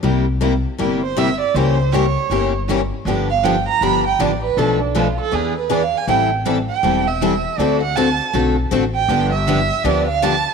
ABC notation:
X:1
M:4/4
L:1/16
Q:"Swing" 1/4=159
K:Gmix
V:1 name="Violin"
z8 z2 c2 e2 d2 | c4 ^c6 z6 | z2 f2 g2 _b2 =b2 g2 d2 B2 | A2 D2 F2 A2 ^G2 B2 (3d2 f2 ^g2 |
g2 z4 g4 e6 | d2 ^f2 a4 z6 g2- | g2 e6 d2 f2 a4 |]
V:2 name="Steel-string acoustic guitar"
[C,G,_B,EG]2 z2 [C,G,B,EG] z3 [C,G,B,EG]2 z2 [C,G,B,EG] z3 | [^C,E,^A,^CG]2 z2 [C,E,A,CG] z3 [C,E,A,CG]2 z2 [C,E,A,CG] z3 | [D,F,B,DG]2 z2 [D,F,B,DG] z3 [D,F,B,DG]2 z2 [D,F,B,DG] z3 | [B,,F,A,DA]2 z2 [B,,F,A,DA] z3 [E,B,D^G]2 z2 [E,B,DG] z3 |
[E,G,CEA]2 z2 [E,G,CEA] z3 [E,G,CEA]2 z2 [E,G,CEA] z3 | [D,A,C^FA]2 z2 [D,A,CFA] z3 [D,A,CFA]2 z2 [D,A,CFA] z3 | [D,F,B,DG]2 z2 [D,F,B,DG] z3 [D,F,B,DG]2 z2 [D,F,B,DG] z3 |]
V:3 name="Steel-string acoustic guitar"
[C,G,_B,EG]2 z2 [C,G,B,EG] z3 [C,G,B,EG]2 z2 [C,G,B,EG] z3 | [^C,G,^A,EG]2 z2 [C,G,A,EG] z3 [C,G,A,EG]2 z2 [C,G,A,EG] z3 | [D,F,B,DG]2 z2 [D,F,B,DG] z3 [D,F,B,DG]2 z2 [D,F,B,DG] z3 | [B,,F,A,DAB]2 z2 [B,,F,A,DAB] z3 [E,B,D^GB]2 z2 [E,B,DGB] z3 |
[E,G,CEA]2 z2 [E,G,CEA] z3 [E,G,CEA]2 z2 [E,G,CEA] z3 | [D,A,C^FA]2 z2 [D,A,CFA] z3 [D,A,CFA]2 z2 [D,A,CFA] z3 | [D,F,B,DG]2 z2 [D,F,B,DG] z3 [D,F,B,DG]2 z2 [D,F,B,DG] z3 |]
V:4 name="Upright bass" clef=bass
C,,8 G,,,8 | ^C,,8 G,,,8 | G,,,8 G,,,4 A,,,4 | B,,,8 E,,8 |
A,,,8 E,,,8 | D,,8 B,,,4 A,,,4 | G,,,8 D,,8 |]